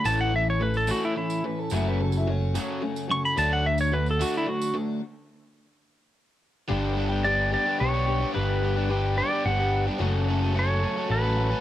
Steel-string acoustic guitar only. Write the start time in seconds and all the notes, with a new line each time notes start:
0.05 A2 E3 A3 C#4 E4 A4
0.60 A3 C#4 E4 A4
0.88 A3 C#4 E4 A4
1.16 A3 C#4 E4 A4
1.72 F#2 C#3 F#3 A3 C#4 F#4
2.26 F#3 A3 C#4 F#4
2.55 F#3 A3 C#4 F#4
2.81 F#3 A3 C#4 F#4
3.08 F#3 A3 C#4 F#4
3.36 D3 F#3 A3 D4 F#4
3.91 F#3 A3 D4 F#4
4.17 A3 D4 F#4
4.45 F#3 A3 D4 F#4
6.68 G2 D3 G3 B3 D4 G4
7.24 G3 B3 D4 G4
7.52 G3 B3 D4 G4
7.79 G3 B3 D4 G4
8.06 G3 B3 D4 G4
8.33 G2 D3 G3 B3 D4 G4
8.88 G3 B3 D4 G4
9.16 G3 B3 D4 G4
9.44 G3 B3 D4 G4
9.98 F#2 C#3 F#3 A3 C#4 F#4
10.54 F#3 A3 C#4 F#4
11.08 F#3 A3 C#4 F#4
11.37 F#3 A3 C#4 F#4